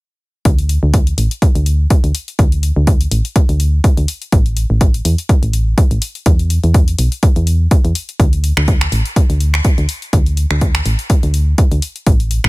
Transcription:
0.45 0.78 D2 medium
0.45 kick loud
0.45 closed hi-hat medium
0.58 closed hi-hat soft
0.69 open hi-hat loud
0.83 1.14 D2 medium
0.94 kick loud
0.94 closed hi-hat medium
1.07 closed hi-hat soft
1.18 1.28 A1 medium
1.18 open hi-hat loud
1.31 closed hi-hat soft
1.42 kick loud
1.42 closed hi-hat medium
1.55 1.86 D2 medium
1.55 closed hi-hat soft
1.66 open hi-hat loud
1.90 kick loud
1.90 closed hi-hat medium
2.04 2.12 D2 loud
2.04 closed hi-hat soft
2.15 open hi-hat loud
2.28 closed hi-hat soft
2.39 2.72 D2 medium
2.39 kick loud
2.39 closed hi-hat medium
2.52 closed hi-hat soft
2.63 open hi-hat loud
2.76 3.08 D2 loud
2.87 kick loud
2.87 closed hi-hat medium
3.01 closed hi-hat soft
3.11 3.22 A1 medium
3.11 open hi-hat loud
3.25 closed hi-hat soft
3.36 kick loud
3.36 closed hi-hat medium
3.49 3.80 D2 medium
3.49 closed hi-hat soft
3.60 open hi-hat loud
3.84 kick loud
3.84 closed hi-hat medium
3.97 4.06 D2 loud
3.97 closed hi-hat soft
4.08 open hi-hat loud
4.22 closed hi-hat soft
4.32 4.65 A1 loud
4.32 kick loud
4.32 closed hi-hat medium
4.46 closed hi-hat soft
4.57 open hi-hat loud
4.70 5.01 A1 medium
4.81 kick loud
4.81 closed hi-hat medium
4.94 closed hi-hat soft
5.05 5.15 E2 medium
5.05 open hi-hat loud
5.18 closed hi-hat soft
5.29 kick loud
5.29 closed hi-hat medium
5.43 5.74 A1 medium
5.43 closed hi-hat soft
5.53 open hi-hat loud
5.78 kick loud
5.78 closed hi-hat medium
5.91 5.99 A1 loud
5.91 closed hi-hat soft
6.02 open hi-hat loud
6.15 closed hi-hat soft
6.26 6.59 E2 loud
6.26 kick loud
6.26 closed hi-hat medium
6.39 closed hi-hat soft
6.50 open hi-hat loud
6.64 6.95 E2 medium
6.64 closed hi-hat soft
6.74 kick loud
6.74 closed hi-hat medium
6.88 closed hi-hat soft
6.98 7.09 B1 medium
6.98 open hi-hat loud
7.12 closed hi-hat soft
7.23 kick loud
7.23 closed hi-hat medium
7.36 7.67 E2 medium
7.36 closed hi-hat soft
7.47 open hi-hat loud
7.71 kick loud
7.71 closed hi-hat medium
7.85 7.93 E2 medium
7.85 closed hi-hat soft
7.95 open hi-hat loud
8.09 closed hi-hat soft
8.20 8.52 D2 loud
8.20 kick loud
8.20 closed hi-hat medium
8.33 closed hi-hat soft
8.44 open hi-hat medium
8.57 8.88 D2 medium
8.57 finger snap medium
8.68 kick loud
8.68 closed hi-hat medium
8.81 finger snap medium
8.81 closed hi-hat soft
8.92 9.02 A1 medium
8.92 open hi-hat loud
9.06 closed hi-hat soft
9.16 kick loud
9.16 closed hi-hat medium
9.30 9.61 D2 medium
9.30 closed hi-hat soft
9.40 open hi-hat loud
9.54 finger snap medium
9.65 kick loud
9.65 closed hi-hat medium
9.78 9.86 D2 loud
9.78 closed hi-hat soft
9.89 open hi-hat loud
10.02 closed hi-hat soft
10.13 10.46 D2 medium
10.13 kick loud
10.13 closed hi-hat medium
10.26 closed hi-hat soft
10.37 open hi-hat medium
10.51 10.82 D2 medium
10.51 finger snap medium
10.61 kick loud
10.61 closed hi-hat medium
10.75 finger snap medium
10.75 closed hi-hat medium
10.86 10.96 A1 medium
10.86 open hi-hat loud
10.99 closed hi-hat soft
11.10 kick loud
11.10 closed hi-hat medium
11.23 11.54 D2 medium
11.23 closed hi-hat soft
11.34 open hi-hat loud
11.58 kick loud
11.58 closed hi-hat medium
11.72 11.80 D2 loud
11.72 closed hi-hat soft
11.82 open hi-hat loud
11.96 closed hi-hat soft
12.07 12.39 A1 medium
12.07 kick loud
12.07 closed hi-hat medium
12.20 closed hi-hat soft
12.31 open hi-hat loud
12.44 12.49 A1 medium
12.44 finger snap medium

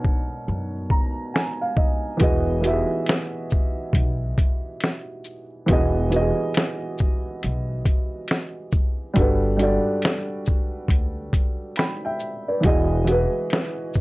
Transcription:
0.00 2.23 B2 medium
0.00 2.19 B3 medium
0.00 2.23 D4 medium
0.00 2.23 D#4 medium
0.00 2.23 A#4 medium
0.00 2.23 C#5 medium
0.04 kick medium
0.48 0.84 F#2 medium
0.90 1.31 A#5 medium
0.90 kick medium
1.34 1.60 G#5 medium
1.34 snare loud
1.61 1.76 F5 medium
1.77 2.18 D#5 medium
1.77 kick medium
2.17 2.58 E3 medium
2.17 2.59 B3 medium
2.17 2.60 F#4 medium
2.17 kick loud
2.17 closed hi-hat medium
2.21 2.82 E1 loud
2.21 2.60 G#4 medium
2.21 2.61 D#5 medium
2.61 4.17 E3 medium
2.61 4.18 B3 medium
2.61 4.19 F#4 medium
2.61 closed hi-hat soft
2.61 shaker soft
2.66 2.73 G4 medium
2.66 4.21 E5 medium
2.72 4.23 G#4 medium
3.07 snare loud
3.07 closed hi-hat medium
3.50 kick medium
3.50 shaker soft
3.93 4.31 B1 medium
3.93 kick medium
3.93 closed hi-hat medium
4.38 kick medium
4.38 closed hi-hat soft
4.38 shaker soft
4.80 snare loud
4.80 closed hi-hat medium
5.24 shaker soft
5.66 6.30 E1 loud
5.66 6.06 E3 medium
5.66 6.07 B3 medium
5.66 6.08 F#4 medium
5.66 kick loud
5.66 closed hi-hat medium
5.71 6.09 G#4 medium
5.71 6.10 D#5 medium
6.10 7.65 E3 medium
6.10 7.66 B3 medium
6.10 7.67 F#4 medium
6.10 closed hi-hat soft
6.10 shaker soft
6.14 6.21 G4 medium
6.14 7.69 D#5 medium
6.21 7.71 G#4 medium
6.54 snare loud
6.54 closed hi-hat medium
6.98 kick medium
6.98 shaker soft
7.43 7.80 B1 medium
7.43 closed hi-hat medium
7.86 kick medium
7.86 closed hi-hat soft
7.86 shaker soft
8.28 snare loud
8.28 closed hi-hat medium
8.72 kick medium
8.72 shaker soft
9.14 9.77 G1 loud
9.14 9.54 G3 medium
9.14 9.55 D4 medium
9.14 9.56 F#4 medium
9.14 kick loud
9.14 closed hi-hat medium
9.18 9.56 A4 medium
9.18 9.57 B4 medium
9.57 11.13 G3 medium
9.57 11.14 D4 medium
9.57 11.15 F#4 medium
9.57 closed hi-hat soft
9.57 shaker soft
9.62 11.15 A4 medium
9.62 11.16 D5 medium
10.02 snare loud
10.02 closed hi-hat medium
10.46 kick medium
10.46 shaker soft
10.89 11.27 D2 medium
10.89 kick medium
10.89 closed hi-hat medium
11.33 kick medium
11.33 closed hi-hat soft
11.33 shaker soft
11.76 12.03 G5 medium
11.76 12.04 B5 medium
11.76 snare loud
11.76 closed hi-hat medium
12.05 12.47 E5 medium
12.05 12.46 G5 medium
12.20 shaker soft
12.48 12.90 B4 medium
12.48 12.90 D5 medium
12.61 13.01 E3 medium
12.61 13.02 E4 medium
12.61 13.03 F#4 medium
12.61 kick loud
12.61 closed hi-hat medium
12.65 13.25 E1 loud
12.65 13.04 G#4 medium
12.65 13.05 D#5 medium
13.05 14.01 E3 medium
13.05 14.01 E4 medium
13.05 14.01 F#4 medium
13.05 closed hi-hat soft
13.05 shaker soft
13.09 14.01 G#4 medium
13.09 14.01 B4 medium
13.50 snare loud
13.50 closed hi-hat medium
13.94 kick medium
13.94 shaker soft

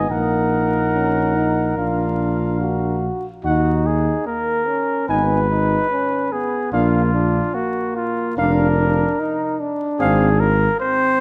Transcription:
0.00 0.10 B3 medium
0.00 0.13 G#5 soft
0.09 1.74 A#1 medium
0.09 0.84 A#3 medium
0.09 1.79 D#4 soft
0.09 2.98 A#4 medium
0.09 1.77 F#5 soft
0.94 1.37 C#4 soft
1.35 1.77 D#4 soft
1.77 3.09 A#1 soft
1.77 3.12 D4 soft
1.77 2.59 F4 medium
1.77 3.09 F5 soft
2.61 3.27 F#4 medium
3.44 4.13 D#2 medium
3.44 4.28 D#4 medium
3.44 3.74 D#4 soft
3.44 3.87 F#4 medium
3.44 3.75 F#5 soft
3.86 4.26 G#4 medium
4.26 4.69 A#3 soft
4.26 5.08 A#4 medium
4.67 5.10 C#4 medium
5.08 5.77 G#1 medium
5.08 5.49 B3 soft
5.08 5.39 D#4 soft
5.08 6.34 B4 medium
5.08 5.39 G#5 medium
5.49 5.90 D#4 medium
5.91 6.31 C#4 medium
6.32 6.72 B3 medium
6.32 6.72 G#4 medium
6.72 7.41 A#1 medium
6.72 7.13 A#3 medium
6.72 7.03 D4 medium
6.72 7.56 F4 medium
6.72 7.03 F5 medium
7.14 7.56 D4 medium
7.54 8.39 A#3 medium
7.54 7.96 F#4 medium
7.96 8.37 F4 medium
8.37 9.05 F1 medium
8.37 8.68 D4 medium
8.37 9.21 D4 medium
8.37 9.57 A#4 medium
8.37 8.68 F5 medium
9.19 9.61 D#4 medium
9.60 10.53 D4 medium
9.99 10.67 G#1 medium
9.99 10.29 C4 medium
9.99 10.41 G#4 medium
9.99 10.30 F5 medium
10.40 10.79 A#4 medium
10.80 11.20 C4 medium
10.80 11.20 C5 loud

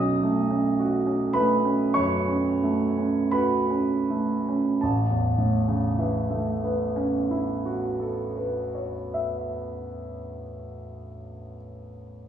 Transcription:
0.00 1.92 B1 soft
0.00 0.39 C#4 soft
0.00 1.32 D#5 medium
0.00 1.36 D#6 medium
0.23 0.68 A3 soft
0.51 0.96 C#4 soft
0.79 1.25 F#4 soft
1.07 1.53 C#4 soft
1.33 1.83 A3 soft
1.33 1.91 B4 medium
1.33 1.94 B5 medium
1.65 2.14 C#4 soft
1.94 2.47 F#2 soft
1.94 3.27 C#5 medium
1.94 3.30 C#6 medium
2.27 2.81 C#4 soft
2.63 3.18 A3 soft
2.98 3.55 C#4 soft
3.31 3.93 F#4 soft
3.31 4.78 B4 soft
3.31 4.81 B5 medium
3.70 4.32 C#4 soft
4.10 4.69 A3 soft
4.49 4.83 C#4 soft
4.81 8.94 A1 soft
4.81 8.91 A5 soft
5.10 9.20 E2 soft
5.38 9.48 A2 soft
5.68 9.78 C#3 soft
5.98 10.09 E3 soft
6.30 10.41 A3 soft
6.64 10.75 B3 soft
6.96 11.07 C#4 soft
7.31 11.41 E4 soft
7.65 11.55 F#4 soft
8.00 11.55 A4 soft
8.37 11.55 B4 soft
8.75 11.55 C#5 soft
9.14 11.55 E5 soft

